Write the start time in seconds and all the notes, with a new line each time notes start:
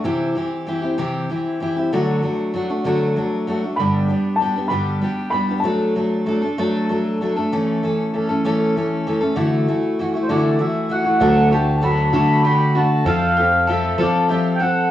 0.04 C3 E3 C4 E4 G4
0.35 E3 C4 E4 G4
0.67 E3 C4 E4 G4
0.82 C4 E4 G4
0.98 C3 E3 C4 E4 G4
1.30 E3 C4 E4 G4
1.60 E3 C4 E4 G4
1.76 C4 E4 G4
1.92 D3 F#3 A3 D4 F#4
2.22 F#3 A3 D4 F#4
2.54 F#3 A3 D4 F#4
2.69 A3 D4 F#4
2.84 D3 F#3 A3 D4 F#4
3.16 F#3 A3 D4 F#4
3.47 F#3 A3 D4 F#4
3.63 A3 D4 F#4
3.76 G2 D3 G3 D4 B5
3.80 B3 G4
4.09 G3 B3 D4 G4
4.36 A5
4.40 G3 B3 D4 G4
4.56 G3 B3 D4 G4
4.68 G2 D3 G3 B3 D4 G4 B5
5.02 G3 B3 D4 G4
5.31 G3 B3 D4 B5
5.35 G4
5.49 G3 B3 D4 G4
5.60 F#3 A5
5.65 A3 D4 A4
5.96 F#3 A3 D4 A4
6.26 F#3 A3 D4 A4
6.42 A3 D4 A4
6.58 F#3 A3 D4 A4
6.89 F#3 A3 D4 A4
7.21 F#3 A3 D4 A4
7.36 A3 D4 A4
7.52 E3 A3 C#4 A4
7.82 E3 A3 C#4 A4
8.13 E3 A3 C#4 A4
8.29 A3 C#4 A4
8.44 E3 A3 C#4 A4
8.76 E3 A3 C#4 A4
9.07 E3 A3 C#4 A4
9.21 A3 C#4 A4
9.36 D3 E3 A3 E4 F#4
9.68 E3 A3 E4 F#4
9.99 E3 A3 E4 F#4
10.14 A3 E4 F#4
10.22 C5
10.29 D3 E3 A3 E4 F#4 D5
10.59 E3 A3 E4 F#4 E5
10.89 E3 A3 E4 F#4 F#5
11.04 A3 E4 F#4
11.20 D2 D3 F#3 A3 D4 F#4 A4
11.51 A3 D4 F#4 G4 A5
11.76 A5
11.81 F#3 A3 D4 F#4 A4 B5
12.13 D3 F#3 A3 D4 F#4 A4
12.45 A3 D4 F#4 G4
12.75 A3 D4 F#4 A5
13.05 F2 F3 C4 F4 A4 F5
13.37 C4 F4 G4 A4
13.67 F3 C4 F4 A4 E5
13.98 F3 C4 F4 A4 D5
14.29 F3 C4 F4 G4 A4 E5
14.55 G5
14.60 C4 A4 F#5